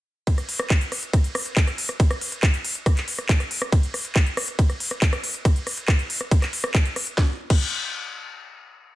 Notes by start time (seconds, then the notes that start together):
0.27 kick, closed hi-hat, ride
0.38 cross-stick, closed hi-hat
0.49 open hi-hat
0.60 cross-stick
0.70 kick, clap, closed hi-hat, ride
0.81 closed hi-hat
0.92 cross-stick, open hi-hat
1.03 closed hi-hat
1.13 kick, cross-stick, closed hi-hat, ride
1.24 closed hi-hat
1.35 cross-stick, open hi-hat
1.46 closed hi-hat
1.57 kick, clap, closed hi-hat, ride
1.67 cross-stick, closed hi-hat
1.78 open hi-hat
1.89 cross-stick, closed hi-hat
2.00 kick, closed hi-hat, ride
2.11 cross-stick, closed hi-hat
2.21 open hi-hat
2.32 closed hi-hat
2.43 kick, cross-stick, clap, closed hi-hat, ride
2.54 closed hi-hat
2.65 open hi-hat
2.75 closed hi-hat
2.86 kick, cross-stick, closed hi-hat, ride
2.97 clap, closed hi-hat
3.08 open hi-hat
3.19 cross-stick, closed hi-hat
3.29 kick, clap, closed hi-hat, ride
3.40 cross-stick, closed hi-hat
3.51 open hi-hat
3.62 cross-stick, closed hi-hat
3.72 kick, closed hi-hat, ride
3.83 closed hi-hat
3.94 cross-stick, open hi-hat
4.05 closed hi-hat
4.16 kick, cross-stick, clap, closed hi-hat, ride
4.26 closed hi-hat
4.37 cross-stick, open hi-hat
4.48 closed hi-hat
4.59 kick, closed hi-hat, ride
4.70 cross-stick, closed hi-hat
4.80 open hi-hat
4.91 cross-stick, closed hi-hat
5.02 kick, clap, closed hi-hat, ride
5.13 cross-stick, closed hi-hat
5.24 open hi-hat
5.34 closed hi-hat
5.45 kick, cross-stick, closed hi-hat, ride
5.56 closed hi-hat
5.67 cross-stick, open hi-hat
5.78 closed hi-hat
5.88 kick, cross-stick, clap, closed hi-hat, ride
5.99 closed hi-hat
6.10 open hi-hat
6.21 cross-stick, closed hi-hat
6.31 kick, closed hi-hat, ride
6.42 cross-stick, clap, closed hi-hat
6.53 open hi-hat
6.64 cross-stick, closed hi-hat
6.75 kick, clap, closed hi-hat, ride
6.85 closed hi-hat
6.96 cross-stick, open hi-hat
7.07 closed hi-hat
7.18 kick, snare
7.50 kick, crash